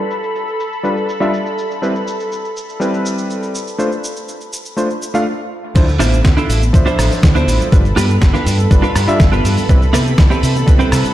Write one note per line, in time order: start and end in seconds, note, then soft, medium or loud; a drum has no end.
0.00 5.27 A4 medium
0.00 5.27 B5 medium
0.10 shaker medium
0.23 shaker soft
0.35 shaker soft
0.48 shaker soft
0.60 shaker medium
0.72 shaker soft
0.83 0.93 G3 medium
0.83 0.93 D4 medium
0.83 0.94 F4 medium
0.83 0.94 B4 medium
0.83 shaker soft
0.97 shaker soft
1.09 shaker medium
1.20 1.30 G3 medium
1.20 1.30 D4 medium
1.20 1.30 F4 medium
1.20 1.30 E5 medium
1.20 shaker soft
1.33 shaker soft
1.46 shaker soft
1.58 shaker medium
1.71 shaker soft
1.82 1.92 G3 medium
1.82 1.92 C4 medium
1.82 1.92 E4 medium
1.82 1.92 B4 medium
1.82 shaker soft
1.95 shaker soft
2.07 shaker medium
2.20 shaker soft
2.32 shaker soft
2.45 shaker soft
2.57 shaker medium
2.69 shaker soft
2.80 3.53 G3 medium
2.80 3.53 C4 medium
2.80 3.53 E4 medium
2.80 3.53 B4 medium
2.80 shaker soft
2.94 shaker soft
3.06 shaker medium
3.18 shaker soft
3.30 shaker soft
3.43 shaker soft
3.55 shaker medium
3.67 shaker soft
3.78 3.88 A3 medium
3.78 3.88 D4 medium
3.78 3.89 F4 medium
3.78 3.89 C5 medium
3.78 shaker soft
3.92 shaker soft
4.04 shaker medium
4.16 shaker soft
4.28 shaker soft
4.41 shaker soft
4.53 shaker medium
4.65 shaker soft
4.77 4.87 A3 medium
4.77 4.87 D4 medium
4.77 4.87 F4 medium
4.77 4.87 C5 medium
4.77 shaker soft
4.90 shaker soft
5.02 shaker medium
5.14 5.23 A3 medium
5.14 5.24 D4 medium
5.14 5.24 F4 medium
5.14 5.24 F5 loud
5.14 shaker soft
5.75 5.96 D2 loud
5.75 5.85 F3 medium
5.75 5.85 D4 medium
5.75 5.85 E4 medium
5.75 11.14 A4 medium
5.75 5.86 C5 medium
5.75 11.14 B5 medium
5.75 kick loud
5.75 closed hi-hat medium
5.75 crash loud
5.75 shaker soft
5.88 closed hi-hat soft
5.88 high bongo medium
5.88 shaker soft
5.99 6.20 A1 loud
5.99 6.18 D4 loud
5.99 6.19 E4 loud
5.99 6.19 F4 loud
5.99 6.19 C5 loud
5.99 cross-stick medium
5.99 open hi-hat loud
5.99 high conga medium
5.99 shaker medium
6.13 closed hi-hat soft
6.13 shaker soft
6.25 6.35 D2 medium
6.25 kick loud
6.25 snare loud
6.25 closed hi-hat medium
6.25 high bongo medium
6.25 shaker soft
6.37 6.62 D4 medium
6.37 6.62 E4 medium
6.37 6.62 F4 medium
6.37 6.63 A4 loud
6.37 closed hi-hat soft
6.37 shaker soft
6.49 6.69 A1 medium
6.49 open hi-hat loud
6.49 shaker medium
6.62 closed hi-hat soft
6.62 high conga medium
6.62 shaker soft
6.73 6.84 D2 medium
6.73 7.69 F3 medium
6.73 7.69 D4 medium
6.73 7.70 C5 medium
6.73 7.70 E5 medium
6.73 kick loud
6.73 closed hi-hat medium
6.73 high bongo soft
6.73 shaker soft
6.86 7.11 D4 loud
6.86 7.11 E4 loud
6.86 7.11 F4 loud
6.86 7.12 C5 loud
6.86 closed hi-hat soft
6.86 shaker soft
6.99 7.09 A1 medium
6.99 cross-stick medium
6.99 open hi-hat loud
6.99 shaker medium
7.11 open hi-hat medium
7.11 high bongo medium
7.11 shaker soft
7.23 7.43 D2 medium
7.23 kick loud
7.23 snare loud
7.23 closed hi-hat medium
7.23 shaker soft
7.35 7.66 D4 medium
7.35 7.66 E4 medium
7.35 7.67 F4 medium
7.35 7.67 C5 loud
7.35 closed hi-hat soft
7.35 high conga loud
7.35 shaker soft
7.48 7.58 A1 medium
7.48 open hi-hat loud
7.48 shaker medium
7.60 closed hi-hat soft
7.60 high bongo medium
7.60 low conga medium
7.60 shaker soft
7.72 7.92 G1 loud
7.72 7.82 G3 medium
7.72 7.82 D4 medium
7.72 7.82 F4 medium
7.72 7.82 B4 medium
7.72 kick loud
7.72 closed hi-hat medium
7.72 shaker soft
7.85 closed hi-hat soft
7.85 shaker soft
7.96 8.17 G2 loud
7.96 8.15 D4 loud
7.96 8.15 F4 loud
7.96 8.16 G4 loud
7.96 8.16 B4 loud
7.96 cross-stick medium
7.96 open hi-hat loud
7.96 high bongo medium
7.96 high conga loud
7.96 shaker medium
8.10 closed hi-hat soft
8.10 shaker soft
8.22 8.32 G1 medium
8.22 kick loud
8.22 snare loud
8.22 closed hi-hat medium
8.22 shaker soft
8.33 8.58 D4 medium
8.33 8.59 F4 medium
8.33 8.59 G4 medium
8.33 8.59 B4 loud
8.33 snare soft
8.33 closed hi-hat soft
8.33 shaker soft
8.46 8.66 G2 medium
8.46 open hi-hat loud
8.46 high bongo medium
8.46 shaker medium
8.59 closed hi-hat soft
8.59 high conga medium
8.59 shaker soft
8.71 8.81 G1 medium
8.71 8.80 G3 medium
8.71 8.80 D4 medium
8.71 8.81 F4 medium
8.71 8.81 B4 medium
8.71 kick loud
8.71 closed hi-hat medium
8.71 shaker soft
8.82 9.07 D4 loud
8.82 9.08 F4 loud
8.82 9.08 G4 loud
8.82 9.08 B4 loud
8.82 closed hi-hat soft
8.82 high bongo medium
8.82 shaker soft
8.96 9.06 G2 medium
8.96 cross-stick medium
8.96 open hi-hat loud
8.96 shaker medium
9.07 9.17 G3 medium
9.07 9.17 D4 medium
9.07 9.17 F4 medium
9.07 9.17 E5 loud
9.07 muted fingered electric bass stroke soft
9.07 shaker soft
9.20 9.40 G1 medium
9.20 kick loud
9.20 snare loud
9.20 closed hi-hat medium
9.20 shaker soft
9.32 9.63 D4 medium
9.32 9.63 F4 medium
9.32 9.63 G4 medium
9.32 9.64 B4 loud
9.32 closed hi-hat soft
9.32 high bongo soft
9.32 high conga medium
9.32 shaker soft
9.45 9.55 G2 medium
9.45 open hi-hat loud
9.45 shaker medium
9.57 open hi-hat medium
9.57 low conga medium
9.57 shaker soft
9.69 9.89 C2 loud
9.69 9.79 G3 medium
9.69 9.79 C4 medium
9.69 9.79 E4 medium
9.69 9.79 B4 loud
9.69 kick loud
9.69 closed hi-hat medium
9.69 high bongo medium
9.69 shaker soft
9.82 closed hi-hat soft
9.82 shaker soft
9.93 10.14 C3 loud
9.93 10.12 C4 loud
9.93 10.12 E4 loud
9.93 10.13 G4 loud
9.93 10.13 B4 loud
9.93 cross-stick medium
9.93 open hi-hat loud
9.93 high conga loud
9.93 shaker medium
10.06 closed hi-hat soft
10.06 shaker soft
10.18 10.29 C2 medium
10.18 kick loud
10.18 snare loud
10.18 closed hi-hat medium
10.18 high bongo soft
10.18 shaker soft
10.30 10.55 C4 medium
10.30 10.55 E4 medium
10.30 10.56 G4 medium
10.30 10.56 B4 loud
10.30 closed hi-hat soft
10.30 shaker soft
10.43 10.63 C3 medium
10.43 open hi-hat loud
10.43 shaker medium
10.56 closed hi-hat soft
10.56 high bongo medium
10.56 high conga medium
10.56 shaker soft
10.66 10.78 C2 medium
10.66 11.14 G3 medium
10.66 11.14 C4 medium
10.66 11.14 E4 medium
10.66 11.14 B4 medium
10.66 kick loud
10.66 closed hi-hat medium
10.66 shaker soft
10.79 11.04 C4 loud
10.79 11.05 E4 loud
10.79 11.05 G4 loud
10.79 11.05 B4 loud
10.79 closed hi-hat soft
10.79 shaker soft
10.92 11.02 C3 medium
10.92 cross-stick medium
10.92 open hi-hat loud
10.92 shaker medium
11.05 muted fingered electric bass stroke soft
11.05 open hi-hat medium
11.05 high bongo medium
11.05 shaker soft